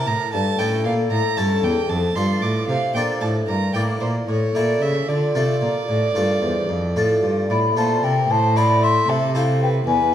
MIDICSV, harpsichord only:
0, 0, Header, 1, 2, 480
1, 0, Start_track
1, 0, Key_signature, -1, "minor"
1, 0, Tempo, 525394
1, 1736, Time_signature, 12, 3, 24, 8
1, 2698, Tempo, 531915
1, 9189, End_track
2, 0, Start_track
2, 0, Title_t, "Harpsichord"
2, 0, Program_c, 0, 6
2, 0, Note_on_c, 0, 64, 38
2, 0, Note_on_c, 0, 70, 43
2, 67, Note_on_c, 0, 45, 47
2, 166, Note_off_c, 0, 64, 0
2, 169, Note_off_c, 0, 70, 0
2, 278, Note_off_c, 0, 45, 0
2, 301, Note_on_c, 0, 43, 46
2, 514, Note_off_c, 0, 43, 0
2, 536, Note_on_c, 0, 61, 36
2, 541, Note_on_c, 0, 45, 46
2, 542, Note_on_c, 0, 64, 34
2, 547, Note_on_c, 0, 69, 40
2, 709, Note_off_c, 0, 61, 0
2, 755, Note_off_c, 0, 45, 0
2, 772, Note_on_c, 0, 46, 45
2, 990, Note_off_c, 0, 46, 0
2, 1008, Note_on_c, 0, 45, 44
2, 1058, Note_off_c, 0, 64, 0
2, 1062, Note_off_c, 0, 69, 0
2, 1228, Note_off_c, 0, 45, 0
2, 1250, Note_on_c, 0, 61, 33
2, 1254, Note_on_c, 0, 43, 42
2, 1254, Note_on_c, 0, 64, 35
2, 1260, Note_on_c, 0, 69, 36
2, 1471, Note_off_c, 0, 43, 0
2, 1494, Note_on_c, 0, 40, 44
2, 1598, Note_off_c, 0, 61, 0
2, 1600, Note_off_c, 0, 64, 0
2, 1604, Note_off_c, 0, 69, 0
2, 1711, Note_off_c, 0, 40, 0
2, 1733, Note_on_c, 0, 41, 45
2, 1951, Note_off_c, 0, 41, 0
2, 1974, Note_on_c, 0, 43, 41
2, 1975, Note_on_c, 0, 62, 33
2, 1979, Note_on_c, 0, 65, 34
2, 1982, Note_on_c, 0, 69, 37
2, 2192, Note_off_c, 0, 43, 0
2, 2218, Note_on_c, 0, 45, 41
2, 2433, Note_off_c, 0, 45, 0
2, 2461, Note_on_c, 0, 48, 40
2, 2495, Note_off_c, 0, 62, 0
2, 2497, Note_off_c, 0, 65, 0
2, 2499, Note_off_c, 0, 69, 0
2, 2675, Note_off_c, 0, 48, 0
2, 2702, Note_on_c, 0, 46, 44
2, 2704, Note_on_c, 0, 62, 38
2, 2709, Note_on_c, 0, 65, 36
2, 2711, Note_on_c, 0, 69, 38
2, 2915, Note_off_c, 0, 46, 0
2, 2937, Note_on_c, 0, 45, 42
2, 3046, Note_off_c, 0, 62, 0
2, 3050, Note_off_c, 0, 65, 0
2, 3051, Note_off_c, 0, 69, 0
2, 3153, Note_off_c, 0, 45, 0
2, 3179, Note_on_c, 0, 43, 42
2, 3395, Note_off_c, 0, 43, 0
2, 3416, Note_on_c, 0, 45, 40
2, 3417, Note_on_c, 0, 58, 30
2, 3419, Note_on_c, 0, 64, 32
2, 3422, Note_on_c, 0, 74, 35
2, 3633, Note_off_c, 0, 45, 0
2, 3653, Note_on_c, 0, 46, 41
2, 3763, Note_off_c, 0, 58, 0
2, 3764, Note_off_c, 0, 64, 0
2, 3767, Note_off_c, 0, 74, 0
2, 3872, Note_off_c, 0, 46, 0
2, 3902, Note_on_c, 0, 45, 37
2, 4118, Note_off_c, 0, 45, 0
2, 4139, Note_on_c, 0, 57, 33
2, 4142, Note_on_c, 0, 46, 39
2, 4148, Note_on_c, 0, 64, 31
2, 4150, Note_on_c, 0, 69, 32
2, 4358, Note_off_c, 0, 46, 0
2, 4382, Note_on_c, 0, 49, 40
2, 4488, Note_off_c, 0, 57, 0
2, 4493, Note_off_c, 0, 64, 0
2, 4494, Note_off_c, 0, 69, 0
2, 4600, Note_off_c, 0, 49, 0
2, 4628, Note_on_c, 0, 50, 41
2, 4843, Note_off_c, 0, 50, 0
2, 4862, Note_on_c, 0, 48, 41
2, 4863, Note_on_c, 0, 57, 30
2, 4864, Note_on_c, 0, 65, 30
2, 4869, Note_on_c, 0, 69, 34
2, 5038, Note_off_c, 0, 57, 0
2, 5082, Note_off_c, 0, 48, 0
2, 5099, Note_on_c, 0, 46, 38
2, 5321, Note_off_c, 0, 46, 0
2, 5345, Note_on_c, 0, 45, 38
2, 5386, Note_off_c, 0, 65, 0
2, 5389, Note_off_c, 0, 69, 0
2, 5564, Note_off_c, 0, 45, 0
2, 5585, Note_on_c, 0, 43, 38
2, 5585, Note_on_c, 0, 57, 32
2, 5590, Note_on_c, 0, 65, 33
2, 5595, Note_on_c, 0, 69, 36
2, 5760, Note_off_c, 0, 57, 0
2, 5803, Note_off_c, 0, 43, 0
2, 5826, Note_on_c, 0, 40, 40
2, 5936, Note_off_c, 0, 65, 0
2, 5940, Note_off_c, 0, 69, 0
2, 6045, Note_off_c, 0, 40, 0
2, 6071, Note_on_c, 0, 41, 39
2, 6289, Note_off_c, 0, 41, 0
2, 6315, Note_on_c, 0, 45, 41
2, 6318, Note_on_c, 0, 57, 29
2, 6321, Note_on_c, 0, 65, 30
2, 6322, Note_on_c, 0, 69, 31
2, 6490, Note_off_c, 0, 57, 0
2, 6532, Note_off_c, 0, 45, 0
2, 6557, Note_on_c, 0, 43, 36
2, 6773, Note_off_c, 0, 43, 0
2, 6803, Note_on_c, 0, 45, 38
2, 6839, Note_off_c, 0, 65, 0
2, 6839, Note_off_c, 0, 69, 0
2, 7016, Note_off_c, 0, 45, 0
2, 7041, Note_on_c, 0, 57, 29
2, 7043, Note_on_c, 0, 46, 35
2, 7044, Note_on_c, 0, 65, 31
2, 7048, Note_on_c, 0, 69, 32
2, 7212, Note_off_c, 0, 57, 0
2, 7255, Note_off_c, 0, 46, 0
2, 7282, Note_on_c, 0, 48, 38
2, 7386, Note_off_c, 0, 65, 0
2, 7388, Note_off_c, 0, 69, 0
2, 7494, Note_off_c, 0, 48, 0
2, 7525, Note_on_c, 0, 45, 46
2, 7760, Note_on_c, 0, 57, 41
2, 7764, Note_on_c, 0, 64, 41
2, 7768, Note_on_c, 0, 72, 41
2, 8199, Note_off_c, 0, 45, 0
2, 8233, Note_on_c, 0, 48, 48
2, 8272, Note_off_c, 0, 57, 0
2, 8274, Note_off_c, 0, 64, 0
2, 8277, Note_off_c, 0, 72, 0
2, 8470, Note_on_c, 0, 57, 43
2, 8471, Note_on_c, 0, 64, 40
2, 8478, Note_on_c, 0, 72, 44
2, 8810, Note_off_c, 0, 57, 0
2, 8811, Note_off_c, 0, 64, 0
2, 8815, Note_off_c, 0, 72, 0
2, 8907, Note_off_c, 0, 48, 0
2, 8942, Note_on_c, 0, 40, 55
2, 9189, Note_off_c, 0, 40, 0
2, 9189, End_track
0, 0, End_of_file